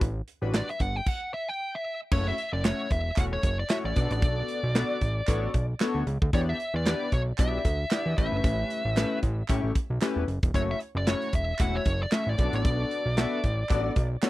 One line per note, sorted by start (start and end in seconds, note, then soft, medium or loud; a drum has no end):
0.01 0.22 A1 loud
0.01 kick loud
0.01 closed hi-hat medium
0.28 closed hi-hat medium
0.42 0.63 A1 medium
0.42 0.69 G3 medium
0.42 0.69 D4 medium
0.42 0.69 F#4 medium
0.42 0.70 B4 loud
0.54 0.69 D5 loud
0.54 snare loud
0.54 clap medium
0.54 closed hi-hat medium
0.69 0.80 E5 loud
0.69 closed hi-hat soft
0.80 1.01 G1 medium
0.80 0.96 F#5 loud
0.80 kick medium
0.80 closed hi-hat medium
0.96 1.08 G5 loud
1.06 1.33 F#5 medium
1.06 kick loud
1.06 crash medium
1.34 1.49 E5 loud
1.49 1.75 G5 medium
1.75 1.99 E5 medium
2.12 2.32 F#1 loud
2.12 2.34 A3 medium
2.12 2.34 C#4 medium
2.12 2.34 E4 medium
2.12 2.34 F#4 medium
2.12 2.28 C#5 loud
2.12 2.35 C#5 medium
2.12 kick loud
2.12 crash loud
2.28 2.53 E5 medium
2.38 closed hi-hat medium
2.53 2.73 F#1 loud
2.53 2.65 D5 medium
2.64 2.87 A3 medium
2.64 2.87 C#4 medium
2.64 2.87 E4 medium
2.64 2.87 F#4 medium
2.64 2.91 C#5 loud
2.64 2.87 C#5 medium
2.64 snare loud
2.64 clap medium
2.64 clap loud
2.64 closed hi-hat loud
2.90 3.11 E1 medium
2.90 3.16 E5 medium
2.90 kick medium
2.90 closed hi-hat medium
3.16 3.38 E1 medium
3.16 3.39 A3 medium
3.16 3.40 C#4 medium
3.16 3.40 E4 medium
3.16 3.40 F#4 medium
3.16 3.40 C#5 medium
3.16 3.23 F#5 loud
3.16 kick loud
3.16 clap medium
3.16 closed hi-hat loud
3.33 3.57 C#5 medium
3.43 3.64 F#1 loud
3.43 kick loud
3.43 closed hi-hat medium
3.59 3.71 D5 medium
3.70 3.92 A3 medium
3.70 3.92 C#4 medium
3.70 3.92 E4 medium
3.70 3.93 F#4 medium
3.70 3.93 C#5 medium
3.70 3.76 E5 loud
3.70 snare loud
3.70 clap medium
3.70 closed hi-hat medium
3.84 3.94 A1 medium
3.84 4.09 D5 medium
3.96 4.08 B1 loud
3.96 4.60 B3 medium
3.96 4.61 D4 medium
3.96 4.61 F#4 medium
3.96 4.61 A4 medium
3.96 4.61 D5 medium
3.96 kick loud
3.96 closed hi-hat medium
4.11 4.24 A1 loud
4.11 5.66 D5 loud
4.11 closed hi-hat medium
4.22 4.43 B1 loud
4.22 kick loud
4.22 closed hi-hat medium
4.48 closed hi-hat medium
4.63 4.84 B1 loud
4.75 4.97 B3 loud
4.75 4.98 D4 loud
4.75 4.98 F#4 medium
4.75 4.98 A4 medium
4.75 4.98 D5 loud
4.75 snare loud
4.75 clap medium
4.75 closed hi-hat medium
5.01 5.22 A1 loud
5.01 kick medium
5.01 closed hi-hat medium
5.27 5.48 A1 medium
5.27 5.50 B3 loud
5.27 5.50 D4 medium
5.27 5.50 F#4 medium
5.27 5.50 A4 medium
5.27 5.50 C#5 loud
5.27 kick loud
5.27 clap medium
5.27 closed hi-hat loud
5.54 5.75 B1 medium
5.54 kick loud
5.54 closed hi-hat medium
5.80 6.03 B3 medium
5.80 6.03 D4 medium
5.80 6.03 F#4 loud
5.80 6.03 A4 medium
5.80 6.03 C#5 loud
5.80 snare loud
5.80 clap medium
5.80 closed hi-hat medium
5.82 clap medium
5.95 6.04 D2 medium
6.07 6.18 C#2 loud
6.07 closed hi-hat medium
6.22 6.31 D2 medium
6.22 kick loud
6.33 6.54 E2 loud
6.33 6.55 B3 medium
6.33 6.56 D4 medium
6.33 6.56 E4 medium
6.33 6.56 G4 medium
6.33 6.39 C#5 loud
6.33 6.56 D5 loud
6.33 kick loud
6.33 closed hi-hat medium
6.49 6.75 E5 loud
6.60 closed hi-hat medium
6.74 6.94 E2 loud
6.74 7.13 D5 loud
6.86 7.08 B3 medium
6.86 7.08 D4 medium
6.86 7.08 E4 medium
6.86 7.08 G4 medium
6.86 7.08 B4 loud
6.86 snare loud
6.86 clap medium
6.86 closed hi-hat loud
7.12 7.33 B1 loud
7.12 7.20 C#5 medium
7.12 kick medium
7.12 closed hi-hat medium
7.38 7.59 B1 medium
7.38 7.61 B3 medium
7.38 7.61 D4 medium
7.38 7.61 E4 medium
7.38 7.61 G4 medium
7.38 7.61 D5 medium
7.38 8.17 E5 loud
7.38 kick loud
7.38 clap medium
7.38 closed hi-hat loud
7.65 7.85 D2 medium
7.65 kick loud
7.65 closed hi-hat medium
7.91 8.13 B3 medium
7.91 8.14 D4 medium
7.91 8.14 E4 medium
7.91 8.14 G4 medium
7.91 8.14 D5 medium
7.91 snare loud
7.91 clap loud
7.91 clap medium
7.91 closed hi-hat medium
8.06 8.15 E2 medium
8.18 8.29 A1 loud
8.18 8.82 A3 medium
8.18 8.82 C#4 medium
8.18 8.82 E4 medium
8.18 8.82 G4 medium
8.18 8.82 B4 medium
8.18 9.19 E5 medium
8.18 kick loud
8.18 closed hi-hat medium
8.32 8.41 G1 loud
8.44 8.64 A1 loud
8.44 kick loud
8.44 closed hi-hat medium
8.70 closed hi-hat medium
8.85 9.05 A1 loud
8.96 9.19 A3 loud
8.96 9.19 C#4 medium
8.96 9.19 E4 medium
8.96 9.19 G4 medium
8.96 9.19 B4 loud
8.96 snare loud
8.96 clap medium
8.96 clap loud
8.96 closed hi-hat loud
9.23 9.43 A1 loud
9.23 kick medium
9.23 closed hi-hat medium
9.48 9.61 A2 medium
9.48 9.71 A3 medium
9.48 9.71 C#4 medium
9.48 9.71 E4 medium
9.48 9.72 G4 medium
9.48 9.72 C#5 loud
9.48 kick loud
9.48 clap medium
9.48 closed hi-hat loud
9.64 9.73 A1 medium
9.75 kick loud
9.75 closed hi-hat medium
9.90 9.99 B1 medium
10.01 10.24 A3 loud
10.01 10.24 C#4 medium
10.01 10.24 E4 loud
10.01 10.24 G4 medium
10.01 10.24 B4 loud
10.01 snare loud
10.01 clap loud
10.01 clap medium
10.01 closed hi-hat medium
10.16 10.25 E1 medium
10.28 10.39 F#1 medium
10.28 closed hi-hat medium
10.43 10.52 E1 medium
10.43 kick loud
10.43 closed hi-hat medium
10.54 10.75 F#1 loud
10.54 10.76 A3 medium
10.54 10.77 C#4 medium
10.54 10.77 E4 medium
10.54 10.77 F#4 medium
10.54 10.77 C#5 loud
10.54 10.60 C#5 loud
10.54 kick loud
10.54 closed hi-hat medium
10.71 10.78 E5 loud
10.80 closed hi-hat medium
10.95 11.15 F#1 loud
10.95 11.09 D5 medium
11.07 11.29 A3 medium
11.07 11.29 C#4 medium
11.07 11.29 E4 medium
11.07 11.29 F#4 medium
11.07 11.30 C#5 medium
11.07 11.35 C#5 loud
11.07 snare loud
11.07 clap medium
11.07 closed hi-hat loud
11.22 closed hi-hat medium
11.33 11.53 E1 loud
11.33 11.61 E5 loud
11.33 kick loud
11.33 closed hi-hat medium
11.59 11.80 E1 medium
11.59 11.82 A3 medium
11.59 11.82 C#4 medium
11.59 11.82 E4 medium
11.59 11.82 F#4 medium
11.59 11.82 E5 medium
11.59 11.75 F#5 loud
11.59 kick loud
11.59 clap medium
11.59 closed hi-hat loud
11.76 12.00 C#5 medium
11.85 12.06 F#1 loud
11.85 kick loud
11.85 closed hi-hat medium
12.03 12.13 D5 medium
12.12 12.34 A3 medium
12.12 12.34 C#4 medium
12.12 12.34 E4 medium
12.12 12.34 F#4 medium
12.12 12.34 C#5 medium
12.12 12.29 E5 loud
12.12 snare loud
12.12 clap medium
12.12 closed hi-hat medium
12.27 12.36 A1 medium
12.27 12.54 D5 medium
12.38 12.50 B1 medium
12.38 13.03 B3 medium
12.38 12.45 C#4 medium
12.38 13.03 F#4 medium
12.38 13.03 A4 medium
12.38 13.03 D5 medium
12.38 kick loud
12.38 closed hi-hat medium
12.44 13.06 D4 medium
12.53 12.66 A1 medium
12.53 14.08 D5 medium
12.53 closed hi-hat medium
12.65 12.85 B1 loud
12.65 kick loud
12.65 closed hi-hat medium
12.91 closed hi-hat medium
13.06 13.26 B1 loud
13.17 13.39 B3 medium
13.17 13.40 D4 medium
13.17 13.40 F#4 medium
13.17 13.40 A4 loud
13.17 13.40 E5 loud
13.17 snare loud
13.17 clap medium
13.17 closed hi-hat medium
13.44 13.64 A1 loud
13.44 kick medium
13.44 closed hi-hat medium
13.69 13.91 A1 medium
13.69 13.92 B3 medium
13.69 13.92 D4 medium
13.69 13.92 F#4 medium
13.69 13.92 A4 medium
13.69 13.92 D5 loud
13.69 kick loud
13.69 clap medium
13.69 closed hi-hat medium
13.96 14.17 B1 loud
13.96 kick loud
13.96 closed hi-hat medium
14.22 14.30 B3 loud
14.22 14.30 D4 medium
14.22 14.30 F#4 medium
14.22 14.30 A4 loud
14.22 14.30 C#5 loud
14.22 snare loud
14.22 clap loud
14.22 clap medium
14.22 closed hi-hat loud